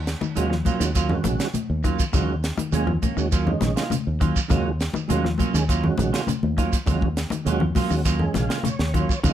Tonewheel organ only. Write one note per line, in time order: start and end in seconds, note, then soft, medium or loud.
0.35 0.52 D#3 medium
0.35 0.53 G#3 medium
0.35 0.53 C#4 medium
0.35 0.53 F#4 loud
0.80 0.91 D#3 medium
0.80 0.91 G#3 medium
0.80 0.92 C#4 medium
0.80 0.92 F#4 medium
1.09 1.47 D#3 medium
1.09 1.48 G#3 medium
1.09 1.48 C#4 medium
1.09 1.48 F#4 medium
2.12 2.35 D#3 medium
2.12 2.35 G#3 medium
2.12 2.35 C#4 medium
2.12 2.35 F#4 loud
2.71 2.88 D#3 medium
2.71 2.89 G#3 medium
2.71 2.89 C#4 medium
2.71 2.89 G#4 loud
3.17 3.28 D#3 medium
3.17 3.28 G#3 medium
3.17 3.28 C#4 medium
3.17 3.28 F#4 medium
3.45 3.84 D#3 medium
3.45 3.84 G#3 medium
3.45 3.84 C#4 medium
3.45 3.85 D#4 medium
4.48 4.71 D#3 medium
4.48 4.71 G#3 medium
4.48 4.71 C#4 medium
4.48 4.72 F#4 medium
5.08 5.25 D#3 medium
5.08 5.25 G#3 medium
5.08 5.25 C#4 medium
5.08 5.26 F#4 loud
5.53 5.64 D#3 medium
5.53 5.64 G#3 medium
5.53 5.65 C#4 medium
5.53 5.65 G#4 medium
5.83 6.21 D#3 medium
5.83 6.21 G#3 medium
5.83 6.21 C#4 medium
5.83 6.22 F#4 medium
6.86 7.08 D#3 medium
6.86 7.08 G#3 medium
6.86 7.08 C#4 medium
6.86 7.09 F#4 loud
7.45 7.62 D#3 medium
7.45 7.62 G#3 medium
7.45 7.62 C#4 medium
7.45 7.63 F#4 loud
7.91 8.01 D#3 medium
7.91 8.02 G#3 medium
7.91 8.02 C#4 medium
7.91 8.02 F#4 medium
8.20 8.58 D#3 medium
8.20 8.58 G#3 medium
8.20 8.58 C#4 medium
8.20 8.59 G#4 medium
8.35 8.62 F5 medium
8.65 9.20 C#5 medium
9.23 9.33 D#3 medium
9.23 9.33 G#3 medium
9.23 9.33 C#4 medium
9.23 9.33 D#4 loud